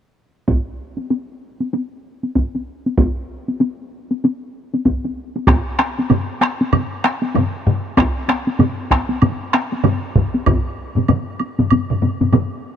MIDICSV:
0, 0, Header, 1, 3, 480
1, 0, Start_track
1, 0, Tempo, 623701
1, 370, Time_signature, 4, 2, 24, 8
1, 9821, End_track
2, 0, Start_track
2, 0, Title_t, "Taiko and cinematic ensemble drums"
2, 367, Note_on_c, 9, 41, 77
2, 369, Note_on_c, 9, 48, 52
2, 444, Note_off_c, 9, 41, 0
2, 446, Note_off_c, 9, 48, 0
2, 753, Note_on_c, 9, 48, 37
2, 830, Note_off_c, 9, 48, 0
2, 850, Note_on_c, 9, 48, 49
2, 927, Note_off_c, 9, 48, 0
2, 1235, Note_on_c, 9, 48, 39
2, 1312, Note_off_c, 9, 48, 0
2, 1332, Note_on_c, 9, 48, 50
2, 1409, Note_off_c, 9, 48, 0
2, 1719, Note_on_c, 9, 48, 35
2, 1796, Note_off_c, 9, 48, 0
2, 1811, Note_on_c, 9, 41, 58
2, 1815, Note_on_c, 9, 48, 52
2, 1888, Note_off_c, 9, 41, 0
2, 1892, Note_off_c, 9, 48, 0
2, 1960, Note_on_c, 9, 48, 38
2, 2037, Note_off_c, 9, 48, 0
2, 2203, Note_on_c, 9, 48, 42
2, 2280, Note_off_c, 9, 48, 0
2, 2290, Note_on_c, 9, 41, 80
2, 2298, Note_on_c, 9, 48, 56
2, 2367, Note_off_c, 9, 41, 0
2, 2375, Note_off_c, 9, 48, 0
2, 2681, Note_on_c, 9, 48, 39
2, 2757, Note_off_c, 9, 48, 0
2, 2772, Note_on_c, 9, 48, 55
2, 2849, Note_off_c, 9, 48, 0
2, 3161, Note_on_c, 9, 48, 45
2, 3238, Note_off_c, 9, 48, 0
2, 3263, Note_on_c, 9, 48, 55
2, 3340, Note_off_c, 9, 48, 0
2, 3645, Note_on_c, 9, 48, 47
2, 3722, Note_off_c, 9, 48, 0
2, 3735, Note_on_c, 9, 41, 62
2, 3736, Note_on_c, 9, 48, 56
2, 3812, Note_off_c, 9, 41, 0
2, 3813, Note_off_c, 9, 48, 0
2, 3882, Note_on_c, 9, 48, 43
2, 3959, Note_off_c, 9, 48, 0
2, 4127, Note_on_c, 9, 48, 48
2, 4204, Note_off_c, 9, 48, 0
2, 4210, Note_on_c, 9, 41, 110
2, 4216, Note_on_c, 9, 37, 64
2, 4217, Note_off_c, 9, 37, 0
2, 4217, Note_on_c, 9, 37, 58
2, 4220, Note_on_c, 9, 48, 59
2, 4287, Note_off_c, 9, 41, 0
2, 4294, Note_off_c, 9, 37, 0
2, 4297, Note_off_c, 9, 48, 0
2, 4454, Note_on_c, 9, 37, 64
2, 4461, Note_off_c, 9, 37, 0
2, 4461, Note_on_c, 9, 37, 67
2, 4461, Note_on_c, 9, 48, 45
2, 4538, Note_off_c, 9, 37, 0
2, 4538, Note_off_c, 9, 48, 0
2, 4607, Note_on_c, 9, 48, 45
2, 4683, Note_off_c, 9, 48, 0
2, 4696, Note_on_c, 9, 45, 85
2, 4699, Note_on_c, 9, 48, 63
2, 4702, Note_on_c, 9, 47, 84
2, 4773, Note_off_c, 9, 45, 0
2, 4776, Note_off_c, 9, 48, 0
2, 4779, Note_off_c, 9, 47, 0
2, 4937, Note_on_c, 9, 48, 52
2, 4938, Note_on_c, 9, 37, 63
2, 4940, Note_off_c, 9, 37, 0
2, 4940, Note_on_c, 9, 37, 63
2, 5014, Note_off_c, 9, 48, 0
2, 5016, Note_off_c, 9, 37, 0
2, 5086, Note_on_c, 9, 48, 52
2, 5163, Note_off_c, 9, 48, 0
2, 5178, Note_on_c, 9, 47, 87
2, 5179, Note_on_c, 9, 45, 94
2, 5179, Note_on_c, 9, 48, 61
2, 5255, Note_off_c, 9, 47, 0
2, 5256, Note_off_c, 9, 45, 0
2, 5256, Note_off_c, 9, 48, 0
2, 5420, Note_on_c, 9, 48, 52
2, 5421, Note_on_c, 9, 37, 67
2, 5424, Note_off_c, 9, 37, 0
2, 5424, Note_on_c, 9, 37, 68
2, 5497, Note_off_c, 9, 48, 0
2, 5501, Note_off_c, 9, 37, 0
2, 5559, Note_on_c, 9, 48, 53
2, 5636, Note_off_c, 9, 48, 0
2, 5653, Note_on_c, 9, 48, 63
2, 5660, Note_on_c, 9, 45, 95
2, 5664, Note_on_c, 9, 47, 89
2, 5730, Note_off_c, 9, 48, 0
2, 5737, Note_off_c, 9, 45, 0
2, 5741, Note_off_c, 9, 47, 0
2, 5901, Note_on_c, 9, 45, 94
2, 5904, Note_on_c, 9, 47, 75
2, 5978, Note_off_c, 9, 45, 0
2, 5981, Note_off_c, 9, 47, 0
2, 6135, Note_on_c, 9, 48, 67
2, 6137, Note_on_c, 9, 41, 96
2, 6140, Note_on_c, 9, 37, 66
2, 6146, Note_off_c, 9, 37, 0
2, 6146, Note_on_c, 9, 37, 63
2, 6212, Note_off_c, 9, 48, 0
2, 6214, Note_off_c, 9, 41, 0
2, 6223, Note_off_c, 9, 37, 0
2, 6375, Note_on_c, 9, 48, 52
2, 6379, Note_on_c, 9, 37, 63
2, 6383, Note_off_c, 9, 37, 0
2, 6383, Note_on_c, 9, 37, 66
2, 6452, Note_off_c, 9, 48, 0
2, 6460, Note_off_c, 9, 37, 0
2, 6519, Note_on_c, 9, 48, 50
2, 6596, Note_off_c, 9, 48, 0
2, 6616, Note_on_c, 9, 48, 65
2, 6617, Note_on_c, 9, 45, 88
2, 6626, Note_on_c, 9, 47, 94
2, 6693, Note_off_c, 9, 48, 0
2, 6694, Note_off_c, 9, 45, 0
2, 6703, Note_off_c, 9, 47, 0
2, 6855, Note_on_c, 9, 41, 67
2, 6857, Note_on_c, 9, 48, 55
2, 6860, Note_on_c, 9, 37, 69
2, 6864, Note_off_c, 9, 37, 0
2, 6864, Note_on_c, 9, 37, 62
2, 6931, Note_off_c, 9, 41, 0
2, 6934, Note_off_c, 9, 48, 0
2, 6941, Note_off_c, 9, 37, 0
2, 7000, Note_on_c, 9, 48, 51
2, 7077, Note_off_c, 9, 48, 0
2, 7098, Note_on_c, 9, 48, 68
2, 7099, Note_on_c, 9, 45, 96
2, 7100, Note_on_c, 9, 47, 84
2, 7175, Note_off_c, 9, 48, 0
2, 7176, Note_off_c, 9, 45, 0
2, 7177, Note_off_c, 9, 47, 0
2, 7338, Note_on_c, 9, 37, 69
2, 7339, Note_off_c, 9, 37, 0
2, 7339, Note_on_c, 9, 37, 65
2, 7341, Note_on_c, 9, 48, 55
2, 7416, Note_off_c, 9, 37, 0
2, 7418, Note_off_c, 9, 48, 0
2, 7482, Note_on_c, 9, 48, 48
2, 7559, Note_off_c, 9, 48, 0
2, 7578, Note_on_c, 9, 48, 64
2, 7580, Note_on_c, 9, 45, 94
2, 7580, Note_on_c, 9, 47, 95
2, 7655, Note_off_c, 9, 48, 0
2, 7657, Note_off_c, 9, 45, 0
2, 7657, Note_off_c, 9, 47, 0
2, 7815, Note_on_c, 9, 41, 58
2, 7816, Note_on_c, 9, 45, 86
2, 7816, Note_on_c, 9, 47, 82
2, 7892, Note_off_c, 9, 41, 0
2, 7893, Note_off_c, 9, 45, 0
2, 7893, Note_off_c, 9, 47, 0
2, 7959, Note_on_c, 9, 48, 50
2, 8036, Note_off_c, 9, 48, 0
2, 8053, Note_on_c, 9, 48, 65
2, 8054, Note_on_c, 9, 45, 92
2, 8056, Note_on_c, 9, 41, 93
2, 8057, Note_on_c, 9, 47, 84
2, 8130, Note_off_c, 9, 48, 0
2, 8131, Note_off_c, 9, 45, 0
2, 8133, Note_off_c, 9, 41, 0
2, 8134, Note_off_c, 9, 47, 0
2, 8437, Note_on_c, 9, 45, 62
2, 8439, Note_on_c, 9, 48, 49
2, 8445, Note_on_c, 9, 47, 68
2, 8513, Note_off_c, 9, 45, 0
2, 8516, Note_off_c, 9, 48, 0
2, 8522, Note_off_c, 9, 47, 0
2, 8532, Note_on_c, 9, 48, 61
2, 8534, Note_on_c, 9, 45, 87
2, 8538, Note_on_c, 9, 47, 89
2, 8609, Note_off_c, 9, 48, 0
2, 8611, Note_off_c, 9, 45, 0
2, 8615, Note_off_c, 9, 47, 0
2, 8773, Note_on_c, 9, 48, 50
2, 8850, Note_off_c, 9, 48, 0
2, 8917, Note_on_c, 9, 47, 61
2, 8918, Note_on_c, 9, 48, 49
2, 8921, Note_on_c, 9, 45, 68
2, 8994, Note_off_c, 9, 47, 0
2, 8995, Note_off_c, 9, 48, 0
2, 8998, Note_off_c, 9, 45, 0
2, 9014, Note_on_c, 9, 45, 63
2, 9016, Note_on_c, 9, 47, 62
2, 9018, Note_on_c, 9, 48, 66
2, 9091, Note_off_c, 9, 45, 0
2, 9093, Note_off_c, 9, 47, 0
2, 9095, Note_off_c, 9, 48, 0
2, 9159, Note_on_c, 9, 45, 62
2, 9163, Note_on_c, 9, 47, 64
2, 9236, Note_off_c, 9, 45, 0
2, 9240, Note_off_c, 9, 47, 0
2, 9251, Note_on_c, 9, 45, 67
2, 9253, Note_on_c, 9, 48, 47
2, 9255, Note_on_c, 9, 47, 63
2, 9328, Note_off_c, 9, 45, 0
2, 9330, Note_off_c, 9, 48, 0
2, 9332, Note_off_c, 9, 47, 0
2, 9395, Note_on_c, 9, 48, 46
2, 9398, Note_on_c, 9, 45, 65
2, 9398, Note_on_c, 9, 47, 61
2, 9472, Note_off_c, 9, 48, 0
2, 9475, Note_off_c, 9, 45, 0
2, 9475, Note_off_c, 9, 47, 0
2, 9491, Note_on_c, 9, 45, 94
2, 9491, Note_on_c, 9, 48, 61
2, 9493, Note_on_c, 9, 47, 94
2, 9568, Note_off_c, 9, 45, 0
2, 9568, Note_off_c, 9, 48, 0
2, 9570, Note_off_c, 9, 47, 0
2, 9821, End_track
3, 0, Start_track
3, 0, Title_t, "Drums"
3, 4212, Note_on_c, 9, 76, 49
3, 4289, Note_off_c, 9, 76, 0
3, 4693, Note_on_c, 9, 76, 37
3, 4770, Note_off_c, 9, 76, 0
3, 4934, Note_on_c, 9, 76, 35
3, 5011, Note_off_c, 9, 76, 0
3, 5177, Note_on_c, 9, 76, 49
3, 5254, Note_off_c, 9, 76, 0
3, 5660, Note_on_c, 9, 76, 34
3, 5737, Note_off_c, 9, 76, 0
3, 6136, Note_on_c, 9, 76, 47
3, 6213, Note_off_c, 9, 76, 0
3, 6616, Note_on_c, 9, 76, 37
3, 6693, Note_off_c, 9, 76, 0
3, 6859, Note_on_c, 9, 76, 39
3, 6936, Note_off_c, 9, 76, 0
3, 7093, Note_on_c, 9, 76, 48
3, 7170, Note_off_c, 9, 76, 0
3, 7573, Note_on_c, 9, 76, 38
3, 7650, Note_off_c, 9, 76, 0
3, 8053, Note_on_c, 9, 76, 54
3, 8130, Note_off_c, 9, 76, 0
3, 8530, Note_on_c, 9, 76, 42
3, 8607, Note_off_c, 9, 76, 0
3, 8769, Note_on_c, 9, 76, 39
3, 8846, Note_off_c, 9, 76, 0
3, 9008, Note_on_c, 9, 76, 47
3, 9085, Note_off_c, 9, 76, 0
3, 9487, Note_on_c, 9, 76, 34
3, 9564, Note_off_c, 9, 76, 0
3, 9821, End_track
0, 0, End_of_file